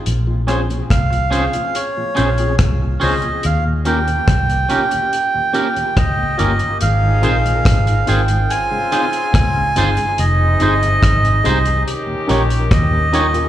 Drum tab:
HH |x-xxxxxxx-xxx-ox|x-xxxxxxx-xxx-xx|x-xxxxxxx-xxx-xx|x-xxxxxxx-xxx-xx|
SD |--r-r-------r---|----r-------r---|----r-------r---|----r-------r---|
BD |----o-------o---|----o-------o---|----o-------o---|----o-------o---|